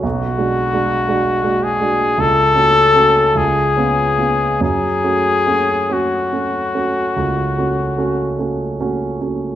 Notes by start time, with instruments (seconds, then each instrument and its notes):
0.03 grand piano B1, trumpet F#4
0.38 grand piano G#3 D4 F#4
0.73 grand piano G#3 D4 F#4
1.08 grand piano G#3 D4 F#4
1.43 grand piano G#3 D4 F#4
1.63 trumpet G#4
1.81 grand piano G#3 D4 F#4
2.18 grand piano C#2, trumpet A4
2.56 grand piano A3 C#4 F#4
2.95 grand piano A3 C#4 F#4
3.35 grand piano C#2, trumpet G#4
3.76 grand piano B3 C#4 F4
4.18 grand piano B3 C#4 F4
4.61 grand piano F#2, trumpet G#4
5.04 grand piano A3 C#4 F#4
5.46 grand piano A3 C#4 F#4
5.90 grand piano A3 C#4 F#4, trumpet F#4
6.32 grand piano A3 C#4 F#4
6.75 grand piano A3 C#4 F#4
7.16 grand piano C#2
7.58 grand piano A3 C#4 F#4
7.98 grand piano A3 C#4 F#4
8.39 grand piano A3 C#4 F#4
8.80 grand piano A3 C#4 F#4
9.21 grand piano A3 C#4 F#4